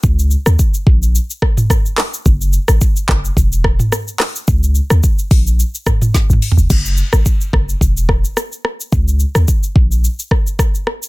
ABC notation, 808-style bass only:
X:1
M:4/4
L:1/16
Q:"Swing 16ths" 1/4=108
K:A#phr
V:1 name="808-style bass" clef=bass
C,,3 D,, z2 A,,,3 z6 z | F,,,3 G,,, z2 F,,,2 =E,,,4 z4 | C,,3 D,, z2 A,,,3 z4 G,,, z E,,, | F,,,3 G,,, z2 F,,,2 =E,,,4 z4 |
C,,3 D,, z2 A,,,3 z6 z |]